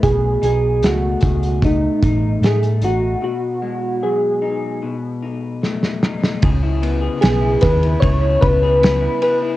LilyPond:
<<
  \new Staff \with { instrumentName = "Synth keys" } { \time 4/4 \key cis \minor \tempo 4 = 75 gis'8 gis'8 fis'4 dis'4 gis'8 fis'8 | fis'4 gis'4 r2 | r4 gis'8 b'8 cis''8 b'4 b'8 | }
  \new Staff \with { instrumentName = "Clean electric guitar" } { \time 4/4 \key cis \minor b,8 dis'8 a8 gis'8 a8 dis'8 a8 dis'8 | b,8 gis8 fis8 dis'8 b,8 dis'8 a8 dis'8 | <cis gis'>16 e'16 b16 gis'16 b16 e'16 gis'16 e'16 <cis gis'>16 e'16 b16 gis'16 b16 e'16 gis'16 e'16 | }
  \new Staff \with { instrumentName = "Fingered electric bass" } { \clef bass \time 4/4 \key cis \minor b,,8 b,,8 cis,8 cis,4 a,,8 a,8 a,,8 | r1 | cis,4 b,,8 dis,8 cis,8 cis,4 r8 | }
  \new DrumStaff \with { instrumentName = "Drums" } \drummode { \time 4/4 <hh bd>8 hh8 <hh sn>8 <hh bd>16 hh16 <hh bd>8 <hh bd>8 <hh sn>16 hh16 hh8 | r4 r4 r4 sn16 sn16 sn16 sn16 | <bd cymr>8 cymr8 <cymr sn>8 <bd cymr sn>16 cymr16 <bd cymr>8 <bd cymr>8 <cymr sn>8 cymr8 | }
>>